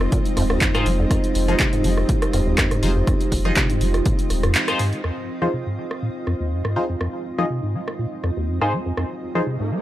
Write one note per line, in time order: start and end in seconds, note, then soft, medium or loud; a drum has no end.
0.00 5.00 G#3 medium
0.00 9.82 C4 medium
0.00 5.00 D#4 medium
0.00 1.07 F4 medium
0.00 9.82 F4 medium
0.00 5.00 C5 medium
0.00 9.82 D#5 medium
0.00 cross-stick medium
0.12 0.19 A#2 medium
0.12 kick loud
0.12 closed hi-hat medium
0.25 closed hi-hat soft
0.37 0.57 D#1 medium
0.37 0.44 F2 loud
0.37 cross-stick soft
0.37 open hi-hat loud
0.50 0.63 D#2 medium
0.50 cross-stick medium
0.61 0.72 F2 loud
0.61 kick loud
0.61 clap loud
0.61 closed hi-hat medium
0.74 0.88 G#2 medium
0.74 0.86 D#4 loud
0.74 0.86 F4 medium
0.74 0.86 G#4 medium
0.74 0.86 C5 loud
0.74 cross-stick medium
0.74 closed hi-hat medium
0.86 1.06 F1 medium
0.86 0.93 G#3 loud
0.86 open hi-hat medium
0.99 1.05 F2 medium
1.10 1.18 F2 medium
1.10 5.00 G4 medium
1.10 kick loud
1.10 cross-stick medium
1.10 closed hi-hat medium
1.24 closed hi-hat medium
1.35 1.55 F1 loud
1.35 open hi-hat loud
1.48 1.55 F3 loud
1.48 1.55 D#4 medium
1.48 1.56 F4 medium
1.48 1.55 G#4 medium
1.48 1.55 C5 medium
1.48 cross-stick soft
1.48 closed hi-hat soft
1.60 1.71 C3 medium
1.60 kick loud
1.60 clap loud
1.60 closed hi-hat medium
1.73 1.86 G#2 medium
1.73 closed hi-hat medium
1.84 2.04 F1 medium
1.84 1.92 G#3 loud
1.84 open hi-hat medium
1.97 cross-stick medium
2.09 2.16 A#2 medium
2.09 kick loud
2.09 closed hi-hat medium
2.22 cross-stick medium
2.22 closed hi-hat medium
2.33 2.53 D#1 medium
2.33 2.41 F2 loud
2.33 cross-stick soft
2.33 open hi-hat loud
2.47 2.60 D#2 medium
2.58 2.69 F2 loud
2.58 kick loud
2.58 cross-stick medium
2.58 clap loud
2.58 closed hi-hat medium
2.71 2.84 G#2 medium
2.71 cross-stick medium
2.71 closed hi-hat medium
2.83 3.02 F1 medium
2.83 2.90 G#3 loud
2.83 2.91 D#4 medium
2.83 2.91 F4 medium
2.83 2.91 G#4 medium
2.83 2.91 C5 medium
2.83 open hi-hat medium
2.96 3.02 F2 medium
3.07 3.15 F2 medium
3.07 kick loud
3.07 cross-stick medium
3.07 closed hi-hat medium
3.21 closed hi-hat medium
3.32 3.52 F1 loud
3.32 kick medium
3.32 open hi-hat loud
3.45 3.51 F3 loud
3.45 3.52 D#4 medium
3.45 3.52 F4 medium
3.45 3.52 G#4 medium
3.45 3.52 D#5 loud
3.45 cross-stick soft
3.45 closed hi-hat soft
3.56 3.67 C3 medium
3.56 kick loud
3.56 clap loud
3.56 closed hi-hat medium
3.70 3.83 G#2 medium
3.70 closed hi-hat medium
3.81 4.01 F1 medium
3.81 3.88 G#3 loud
3.81 open hi-hat medium
3.94 cross-stick medium
3.94 closed hi-hat soft
4.06 4.13 A#2 medium
4.06 kick loud
4.06 closed hi-hat medium
4.19 closed hi-hat medium
4.30 4.50 D#1 medium
4.30 cross-stick soft
4.30 open hi-hat loud
4.43 4.56 F2 loud
4.43 cross-stick medium
4.43 closed hi-hat soft
4.55 4.70 F3 medium
4.55 clap loud
4.55 closed hi-hat medium
4.68 4.74 F2 loud
4.68 4.80 D#4 loud
4.68 4.79 F4 medium
4.68 4.80 G#4 medium
4.68 4.80 C5 loud
4.68 cross-stick medium
4.68 closed hi-hat medium
4.79 4.94 G#2 loud
4.79 open hi-hat medium
4.93 4.99 F3 loud
4.93 closed hi-hat soft
5.04 5.11 F2 medium
5.04 9.82 G#3 medium
5.04 9.82 D#4 medium
5.04 8.93 F4 medium
5.04 9.82 C5 medium
5.04 cross-stick medium
5.42 5.48 F3 loud
5.42 5.49 D#4 medium
5.42 5.49 F4 medium
5.42 5.49 G#4 medium
5.42 5.49 C5 medium
5.42 cross-stick soft
5.53 5.64 C3 medium
5.66 5.79 G#2 medium
5.78 5.85 G#3 loud
5.91 cross-stick medium
6.02 6.10 A#2 medium
6.27 6.34 F2 medium
6.27 cross-stick soft
6.40 6.53 D#2 medium
6.51 6.62 F2 loud
6.65 6.77 G#2 medium
6.65 cross-stick medium
6.76 6.83 G#3 loud
6.76 6.84 D#4 medium
6.76 6.84 F4 medium
6.76 6.84 G#4 medium
6.76 6.84 C5 medium
6.89 6.96 F2 medium
7.01 7.08 F2 medium
7.01 cross-stick medium
7.38 7.45 F3 loud
7.38 7.46 D#4 medium
7.38 7.46 F4 medium
7.38 7.46 G#4 medium
7.38 7.46 D#5 medium
7.38 cross-stick soft
7.50 7.61 C3 medium
7.63 7.76 G#2 medium
7.74 7.82 G#3 loud
7.88 cross-stick medium
7.99 8.06 A#2 medium
8.24 8.31 F2 loud
8.24 cross-stick soft
8.37 8.50 D#2 medium
8.48 8.59 F2 loud
8.61 8.74 G#2 medium
8.61 8.73 D#4 medium
8.61 8.73 F4 medium
8.61 8.73 G#4 medium
8.61 8.73 C5 loud
8.61 cross-stick medium
8.73 8.80 G#3 loud
8.86 8.92 F2 medium
8.97 9.05 F2 medium
8.97 9.82 G4 medium
8.97 cross-stick medium
8.97 riser medium
9.35 9.42 F3 loud
9.35 9.42 D#4 medium
9.35 9.42 F4 medium
9.35 9.42 G#4 medium
9.35 9.42 C5 medium
9.35 cross-stick soft
9.47 9.57 C3 medium
9.60 9.73 G#2 medium
9.71 9.78 G#3 loud